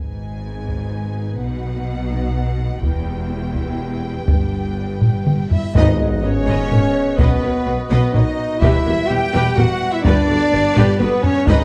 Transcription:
Already playing: double bass section G#1, cello section G#2, french horn section B3 G#4, viola section D#4, violin section B4 G#5
0.69 taiko
1.40 double bass section B1, cello section B2, french horn section D#4, violin section F#5
2.82 double bass section E1, cello section E2, french horn section B3 G4, viola section E4, violin section B4 G5, taiko
3.54 taiko
4.27 double bass section G1, cello section G2, viola section D4, taiko, reverse cymbal
5.02 taiko low-mid
5.27 taiko mid
5.50 french horn section E4, flute E5, violin section E5, taiko low
5.74 double bass section G#1, cello section G#2, timpani G#2, pipe organ B3 G#4 B4 D#5, french horn section D#4, viola section B4 D#5, flute D#5, violin section D#5, taiko, sub drop
5.99 double bass section G#1, cello section G#2, viola section A#4 C#5
6.22 double bass section G#1, cello section G#2, french horn section C#4, viola section B4 D#5, flute C#5, violin section C#5
6.46 double bass section G#1, cello section G#2, viola section B4 D#5
6.71 double bass section G#1, cello section G#2, viola section A#4 C#5, taiko low-mid
7.18 double bass section B1, cello section B2, french horn section B3, pipe organ F#4, violin section B4, flute B4, viola section B4 D#5, taiko
7.42 double bass section B1, cello section B2, viola section A#4 C#5
7.66 double bass section B1, cello section B2, viola section B4 D#5
7.90 double bass section B1, cello section B2, french horn section B3, viola section B4 D#5, violin section B4, flute B4
8.14 double bass section B1, cello section B2, french horn section D#4, viola section A#4 C#5, violin section D#5, flute D#5, taiko low-mid
8.59 double bass section E1, cello section E2, french horn section E4, viola section G4 B4, violin section E5, flute E5, taiko
8.63 pipe organ G3 E5
8.85 double bass section E1, cello section E2, viola section F#4 A#4
9.07 double bass section E1, cello section E2, french horn section G4, viola section G4 B4, violin section G5
9.11 flute G5
9.33 double bass section E1, cello section E2, viola section G4 B4
9.55 double bass section E1, cello section E2, french horn section F#4, viola section F#4 A#4, violin section F#5, flute F#5, taiko low-mid
9.93 french horn section E4, violin section E5, flute E5
10.03 double bass section G1, cello section G2, french horn section D4, viola section G4 B4, violin section D5, flute D5, taiko
10.29 double bass section G1, cello section G2, viola section F#4 A4
10.52 double bass section G1, cello section G2, viola section G4 B4
10.76 double bass section G1, cello section G2, viola section G4 B4, taiko low-mid
10.99 double bass section G1, cello section G2, french horn section B3, viola section F#4 A4, flute B4, violin section B4, taiko high
11.23 french horn section C#4, flute C#5, violin section C#5, taiko low
11.47 double bass section G#1, cello section G#2, pipe organ G#3 D#4 G#4, french horn section D#4, viola section B4 D#5, violin section D#5, flute D#5, taiko

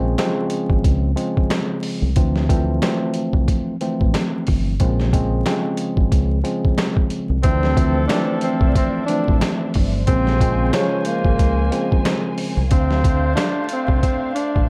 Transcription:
Already playing: fingered electric bass A#1, tine electric piano C#3 F3 G#3 C4
0.18 tine electric piano C#3 F3 G#3 C4, snare, closed hi-hat
0.50 closed hi-hat
0.70 fingered electric bass G#1, kick
0.84 fingered electric bass C#2, kick, closed hi-hat
1.16 tine electric piano C#3 F3 G#3 C4, closed hi-hat
1.37 kick
1.50 snare, closed hi-hat
1.83 open hi-hat
2.02 fingered electric bass C2
2.16 tine electric piano D2 E3 F3 A3 C4, fingered electric bass D2, kick, closed hi-hat
2.36 snare
2.49 tine electric piano D2 E3 F3 A3 C4, kick, closed hi-hat
2.82 tine electric piano D2 E3 F3 A3 C4, snare, closed hi-hat
3.14 closed hi-hat
3.33 fingered electric bass C2, kick
3.48 kick, closed hi-hat
3.81 tine electric piano D2 E3 F3 A3 C4, closed hi-hat
4.01 fingered electric bass A1, kick
4.14 snare, closed hi-hat
4.47 fingered electric bass G1, kick, open hi-hat
4.80 fingered electric bass A#1, tine electric piano C#3 F3 G#3 C4, kick, closed hi-hat
5.00 snare
5.13 tine electric piano C#3 F3 G#3 C4, kick, closed hi-hat
5.46 tine electric piano C#3 F3 G#3 C4, snare, closed hi-hat
5.77 closed hi-hat
5.97 fingered electric bass G#1, kick
6.12 fingered electric bass C#2, kick, closed hi-hat
6.43 tine electric piano C#3 F3 G#3 C4, closed hi-hat
6.65 kick
6.78 snare, closed hi-hat
6.97 kick
7.10 closed hi-hat
7.30 fingered electric bass C2
7.43 tine electric piano D2 E3 F3 A3 C4, fingered electric bass D2, horn section F3 E4 A4, tenor saxophone C4, string section D4 C5 D5 E5, kick, closed hi-hat
7.63 snare
7.76 tine electric piano D2 E3 F3 A3 C4, kick, closed hi-hat
8.07 tine electric piano D2 E3 F3 A3 C4, tenor saxophone D4, finger snap, snare, closed hi-hat
8.41 tenor saxophone C4, closed hi-hat
8.61 fingered electric bass C2, kick
8.75 tenor saxophone C4, kick, closed hi-hat
9.06 tine electric piano D2 E3 F3 A3 C4, tenor saxophone D4, closed hi-hat
9.28 fingered electric bass A1, kick
9.41 finger snap, snare, closed hi-hat
9.74 fingered electric bass G1, kick, open hi-hat
10.07 fingered electric bass A#1, tine electric piano C#3 F3 G#3 C4, string section C#3 A#4 G#5, horn section G#3 F4 C5, tenor saxophone C4, kick, closed hi-hat
10.27 snare
10.40 tine electric piano C#3 F3 G#3 C4, kick, closed hi-hat
10.73 tine electric piano C#3 F3 G#3 C5, tenor saxophone C#4, finger snap, snare, closed hi-hat
11.05 tenor saxophone A#3, closed hi-hat
11.25 fingered electric bass G#1, kick
11.39 fingered electric bass C#2, kick, closed hi-hat
11.71 tine electric piano C#3 F3 G#3 C4, closed hi-hat
11.92 kick
12.05 finger snap, snare, closed hi-hat
12.38 open hi-hat
12.57 fingered electric bass C2
12.71 fingered electric bass D2, horn section A3 F4 C5, tenor saxophone C4, string section D4 E5 F5, kick, closed hi-hat
12.91 snare
13.04 kick, closed hi-hat
13.35 tenor saxophone D4, finger snap, snare, closed hi-hat
13.69 tenor saxophone C4, closed hi-hat
13.88 fingered electric bass C2, kick
14.02 tenor saxophone C4, kick, closed hi-hat
14.35 tenor saxophone D4, closed hi-hat
14.56 fingered electric bass A1, kick

